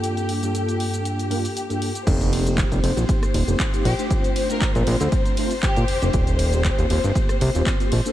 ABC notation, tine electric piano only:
X:1
M:4/4
L:1/16
Q:"Swing 16ths" 1/4=118
K:Fmix
V:1 name="Tine electric piano"
[G,,B,DFA]3 [G,,B,DFA]6- [G,,B,DFA] [G,,B,DFB] z2 [G,,B,DFA]2 z | [B,CEG]3 [B,CEG]8 [B,CEG]2 [B,CEG] z [A,CDF]- | [A,CDF]3 [A,CDF]6- [A,CDF] [A,CDF] z4 [A,CDF] | z3 [B,CFG]8 [B,CFG]2 [B,CFG] z [B,DFA] |]